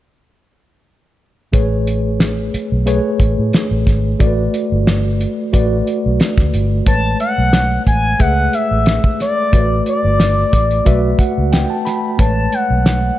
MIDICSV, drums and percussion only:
0, 0, Header, 1, 2, 480
1, 0, Start_track
1, 0, Key_signature, 3, "major"
1, 0, Tempo, 665927
1, 1107, Time_signature, 4, 2, 24, 8
1, 9505, End_track
2, 0, Start_track
2, 0, Title_t, "Drums"
2, 1105, Note_on_c, 9, 42, 80
2, 1106, Note_on_c, 9, 36, 107
2, 1177, Note_off_c, 9, 42, 0
2, 1178, Note_off_c, 9, 36, 0
2, 1350, Note_on_c, 9, 42, 69
2, 1422, Note_off_c, 9, 42, 0
2, 1588, Note_on_c, 9, 38, 99
2, 1589, Note_on_c, 9, 42, 77
2, 1660, Note_off_c, 9, 38, 0
2, 1661, Note_off_c, 9, 42, 0
2, 1831, Note_on_c, 9, 42, 68
2, 1903, Note_off_c, 9, 42, 0
2, 2068, Note_on_c, 9, 42, 82
2, 2140, Note_off_c, 9, 42, 0
2, 2304, Note_on_c, 9, 36, 90
2, 2311, Note_on_c, 9, 42, 60
2, 2376, Note_off_c, 9, 36, 0
2, 2383, Note_off_c, 9, 42, 0
2, 2547, Note_on_c, 9, 42, 68
2, 2554, Note_on_c, 9, 38, 107
2, 2619, Note_off_c, 9, 42, 0
2, 2626, Note_off_c, 9, 38, 0
2, 2788, Note_on_c, 9, 36, 75
2, 2793, Note_on_c, 9, 42, 61
2, 2795, Note_on_c, 9, 38, 28
2, 2860, Note_off_c, 9, 36, 0
2, 2865, Note_off_c, 9, 42, 0
2, 2867, Note_off_c, 9, 38, 0
2, 3029, Note_on_c, 9, 42, 80
2, 3030, Note_on_c, 9, 36, 110
2, 3101, Note_off_c, 9, 42, 0
2, 3102, Note_off_c, 9, 36, 0
2, 3271, Note_on_c, 9, 42, 65
2, 3344, Note_off_c, 9, 42, 0
2, 3512, Note_on_c, 9, 38, 107
2, 3514, Note_on_c, 9, 42, 75
2, 3584, Note_off_c, 9, 38, 0
2, 3586, Note_off_c, 9, 42, 0
2, 3752, Note_on_c, 9, 42, 62
2, 3824, Note_off_c, 9, 42, 0
2, 3990, Note_on_c, 9, 42, 86
2, 3992, Note_on_c, 9, 36, 87
2, 4062, Note_off_c, 9, 42, 0
2, 4064, Note_off_c, 9, 36, 0
2, 4233, Note_on_c, 9, 42, 57
2, 4305, Note_off_c, 9, 42, 0
2, 4468, Note_on_c, 9, 42, 71
2, 4475, Note_on_c, 9, 38, 105
2, 4540, Note_off_c, 9, 42, 0
2, 4547, Note_off_c, 9, 38, 0
2, 4596, Note_on_c, 9, 36, 81
2, 4603, Note_on_c, 9, 38, 32
2, 4668, Note_off_c, 9, 36, 0
2, 4675, Note_off_c, 9, 38, 0
2, 4711, Note_on_c, 9, 42, 64
2, 4783, Note_off_c, 9, 42, 0
2, 4948, Note_on_c, 9, 36, 109
2, 4948, Note_on_c, 9, 42, 90
2, 5020, Note_off_c, 9, 36, 0
2, 5020, Note_off_c, 9, 42, 0
2, 5189, Note_on_c, 9, 42, 60
2, 5261, Note_off_c, 9, 42, 0
2, 5428, Note_on_c, 9, 38, 104
2, 5429, Note_on_c, 9, 42, 83
2, 5500, Note_off_c, 9, 38, 0
2, 5501, Note_off_c, 9, 42, 0
2, 5670, Note_on_c, 9, 36, 77
2, 5672, Note_on_c, 9, 42, 63
2, 5742, Note_off_c, 9, 36, 0
2, 5744, Note_off_c, 9, 42, 0
2, 5907, Note_on_c, 9, 42, 79
2, 5911, Note_on_c, 9, 36, 78
2, 5979, Note_off_c, 9, 42, 0
2, 5983, Note_off_c, 9, 36, 0
2, 6149, Note_on_c, 9, 42, 60
2, 6222, Note_off_c, 9, 42, 0
2, 6386, Note_on_c, 9, 42, 72
2, 6393, Note_on_c, 9, 38, 104
2, 6458, Note_off_c, 9, 42, 0
2, 6465, Note_off_c, 9, 38, 0
2, 6515, Note_on_c, 9, 36, 89
2, 6587, Note_off_c, 9, 36, 0
2, 6633, Note_on_c, 9, 42, 65
2, 6635, Note_on_c, 9, 38, 27
2, 6705, Note_off_c, 9, 42, 0
2, 6707, Note_off_c, 9, 38, 0
2, 6868, Note_on_c, 9, 42, 81
2, 6869, Note_on_c, 9, 36, 105
2, 6941, Note_off_c, 9, 36, 0
2, 6941, Note_off_c, 9, 42, 0
2, 7108, Note_on_c, 9, 42, 58
2, 7180, Note_off_c, 9, 42, 0
2, 7350, Note_on_c, 9, 38, 94
2, 7352, Note_on_c, 9, 42, 79
2, 7422, Note_off_c, 9, 38, 0
2, 7424, Note_off_c, 9, 42, 0
2, 7590, Note_on_c, 9, 36, 82
2, 7593, Note_on_c, 9, 42, 68
2, 7663, Note_off_c, 9, 36, 0
2, 7666, Note_off_c, 9, 42, 0
2, 7718, Note_on_c, 9, 42, 40
2, 7790, Note_off_c, 9, 42, 0
2, 7829, Note_on_c, 9, 42, 79
2, 7831, Note_on_c, 9, 36, 80
2, 7901, Note_off_c, 9, 42, 0
2, 7903, Note_off_c, 9, 36, 0
2, 8064, Note_on_c, 9, 36, 86
2, 8073, Note_on_c, 9, 42, 63
2, 8136, Note_off_c, 9, 36, 0
2, 8145, Note_off_c, 9, 42, 0
2, 8308, Note_on_c, 9, 42, 71
2, 8315, Note_on_c, 9, 38, 108
2, 8380, Note_off_c, 9, 42, 0
2, 8387, Note_off_c, 9, 38, 0
2, 8552, Note_on_c, 9, 42, 63
2, 8554, Note_on_c, 9, 38, 29
2, 8624, Note_off_c, 9, 42, 0
2, 8626, Note_off_c, 9, 38, 0
2, 8787, Note_on_c, 9, 36, 106
2, 8787, Note_on_c, 9, 42, 85
2, 8859, Note_off_c, 9, 36, 0
2, 8859, Note_off_c, 9, 42, 0
2, 9027, Note_on_c, 9, 42, 65
2, 9099, Note_off_c, 9, 42, 0
2, 9269, Note_on_c, 9, 38, 100
2, 9270, Note_on_c, 9, 42, 83
2, 9341, Note_off_c, 9, 38, 0
2, 9342, Note_off_c, 9, 42, 0
2, 9505, End_track
0, 0, End_of_file